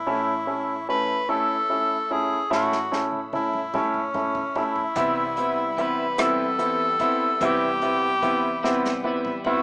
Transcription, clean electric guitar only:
4.96 C3 E3 G3 B3 E4
5.36 G3 B3 E4
5.77 E3 G3 B3 E4
6.18 C3 E3 G3 B3 E4
6.59 E3 G3 B3 E4
6.99 G3 B3 E4
7.40 C3 E3 G3 B3 E4
7.82 G3 B3 E4
8.22 E3 G3 B3 E4
8.63 C3 E3 G3 B3 E4
9.04 E3 G3 B3 E4
9.44 G3 B3 E4

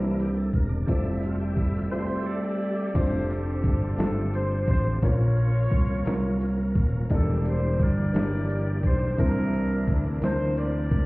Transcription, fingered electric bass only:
Already playing: C2
0.53 E1
0.88 F1
2.95 F1
3.64 G1
3.98 G1
4.68 A1
5.02 A#1
5.72 C2
6.07 C2
6.75 D#1
7.11 E1
7.80 G1
8.14 G1
8.83 B1
9.18 C2
9.87 D2
10.22 D2
10.91 C#2

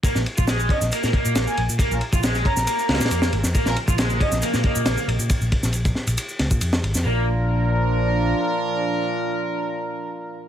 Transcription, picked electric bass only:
0.03 muted picked electric bass stroke
0.16 A#1
0.38 A#1
0.82 A#1
0.92 muted picked electric bass stroke
1.04 A#2
1.25 A#2
1.36 A#1
1.58 A#1
1.69 A#2
1.79 muted picked electric bass stroke
1.91 A#1
2.13 A#1
2.57 A#1
2.89 C#2
3.00 A#2
3.11 F2
3.33 G#1
3.44 F2
3.55 muted picked electric bass stroke
3.66 A#1
3.88 A#1
4.32 A#1
4.42 muted picked electric bass stroke
4.54 A#2
4.76 A#2
4.86 A#1
5.08 A#1
5.19 A#2
5.41 A#1
5.63 A#1
6.07 A#1
6.40 C#2
6.51 A#2
6.61 F2
6.83 G#1
6.94 F2
7.05 A#1

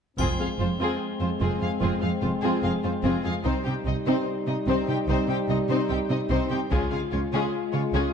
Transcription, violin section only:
0.20 C4 G#4
0.40 G#4 F5
0.60 F4 C5
0.81 C4 G#4
1.21 F4 C5
1.40 C4 G#4
1.62 G#4 F5
1.81 C4 G#4
2.01 G#4 F5
2.21 F4 C5
2.42 C4 G#4
2.63 G#4 F5
2.84 F4 C5
3.03 C4 G#4
3.24 G#4 F5
3.44 C4 C5
3.65 G4 G5
3.86 D#4 D#5
4.05 C4 C5
4.47 D#4 D#5
4.68 C4 C5
4.89 G4 G5
5.09 C4 C5
5.29 G4 G5
5.49 D#4 D#5
5.69 C4 C5
5.89 G4 G5
6.10 D#4 D#5
6.30 C4 C5
6.50 G4 G5
6.71 C#4 G#4
6.91 G#4 F5
7.11 F4 C#5
7.32 C#4 G#4
7.73 F4 C#5
7.94 C#4 G#4

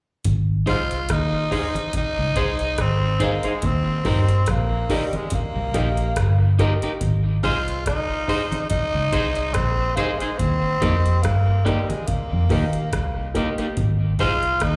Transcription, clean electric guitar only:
0.66 D#4 G#4 C5
1.51 D#4 G#4 C5
1.75 muted clean electric guitar stroke
2.36 D#4 G#4 C5
3.20 D#4 G#4 C5
3.44 D#4 G#4 C5
4.05 D#4 G4 A#4
4.90 D#4 G4 A#4
5.13 muted clean electric guitar stroke
5.74 D#4 G4 A#4
6.59 D#4 G4 A#4
6.83 D#4 G4 A#4
7.43 D#4 G#4 C5
8.28 D#4 G#4 C5
8.52 muted clean electric guitar stroke
9.12 D#4 G#4 C5
9.97 D#4 G#4 C5
10.21 D#4 G#4 C5
10.81 A#3 D#4 G4
11.65 A#3 D#4 G4
11.89 muted clean electric guitar stroke
12.50 A#3 D#4 G4
13.35 A#3 D#4 G4
13.58 A#3 D#4 G4
14.19 D#4 G#4 C5

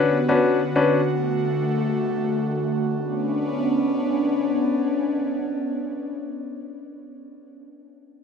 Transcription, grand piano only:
Already playing: C#4 D4 F#4 B4
0.28 C#4 D4 F#4 B4
0.75 C#4 D4 F#4 B4

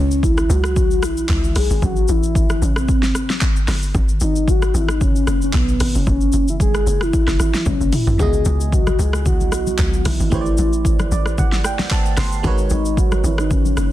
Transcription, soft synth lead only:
Already playing: C#4
0.24 E4
0.51 F#4
1.04 E4
1.57 G#4
1.84 F#4
2.10 E4
2.64 C#4
2.78 C4
4.23 D#4
4.50 F#4
4.76 E4
4.91 D#4
5.03 C#4
5.44 C#4
5.56 B3
5.97 C#4
6.08 C#4
6.50 E4
6.62 G#4
7.03 E4
7.41 E4
7.68 C#4
7.94 E4
8.20 G#4
8.47 G#4
8.74 F#4
9.00 G#4
9.27 F#4
9.54 F#4
10.07 E4
12.72 D#4
12.99 F#4
13.26 E4
13.40 D#4
13.52 C#4

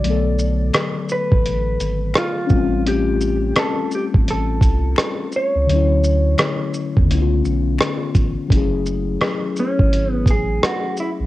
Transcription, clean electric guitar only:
Already playing: D5
1.12 B4
2.18 F4
2.88 G4
3.59 A4
3.95 G4
4.30 A4
5.36 C#5
9.60 C#4
10.13 B3
10.31 G#4
10.65 F#4
11.00 E4

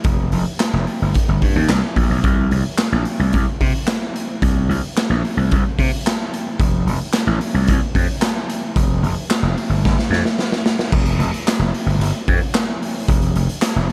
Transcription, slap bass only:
0.05 F1
0.32 F1
0.73 F1
1.02 G1
1.29 G1
1.42 G2
1.56 D#2
1.69 C2
1.96 A#1
2.10 B1
2.24 C2
2.51 C2
2.92 A#1
3.19 C2
3.34 C2
3.61 C3
4.42 C2
4.69 C2
5.10 A#1
5.37 C2
5.52 C2
5.79 C3
6.60 F1
6.86 F1
7.27 A1
7.54 C2
7.69 C2
7.95 F2
8.76 F1
9.02 F1
9.43 F1
9.69 G1
9.85 G1
10.10 F2
10.92 F1
11.18 F1
11.59 F1
11.86 G1
11.99 G1
12.28 F2
13.08 F1
13.36 F1
13.76 F1

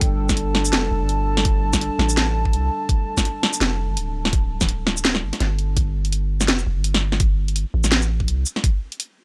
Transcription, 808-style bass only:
0.02 G1
0.73 F1
0.91 F1
1.01 G1
1.99 A1
2.53 C2
3.61 F1
3.89 G1
3.97 D1
5.23 G1
5.41 G1
5.77 G1
6.48 F1
6.67 F1
6.76 G1
7.74 A1
8.28 C2

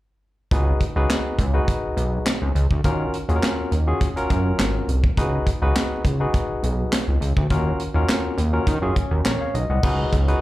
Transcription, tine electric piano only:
0.51 D#4 F#4 G#4 B4
0.96 D#4 F#4 G#4 B4
1.54 D#4 F#4 G#4 B4
2.84 C#4 F4 F#4 A#4
3.29 C#4 F4 F#4 G#4
3.36 A#4
3.87 C#4 F4 F#4 G#4
4.16 C#4 F4 F#4 A#4
5.17 D#4 F#4 G#4 B4
5.62 D#4 F#4 G#4 B4
6.20 D#4 F#4 G#4 B4
7.50 C#4 F4 F#4 A#4
7.95 C#4 F4 F#4 A#4
8.53 C#4 F4 F#4 A#4
8.82 C#4 F4 F#4 G#4
9.11 F#4 A#4
9.25 A#4 C#5
9.41 C#5 F5
9.55 D#5
9.70 D#5 F#5
9.83 D#4 F#4 G#4 B4
10.28 D#4 F#4 G#4 B4

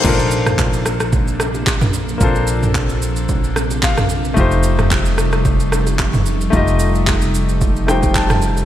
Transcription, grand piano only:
Already playing: D#4 C5
0.02 A#3 D4 F4
0.07 A4 A#4
0.15 C5
2.18 A#3 C4 F4
2.23 D4 A4 C5
3.83 F5
4.34 A3 D#4 F4
4.39 G4 C5
6.50 A3 D#4 F4
6.55 G4 D#5
7.87 A3 D#4 F4 G4 C5 G5
8.16 A5

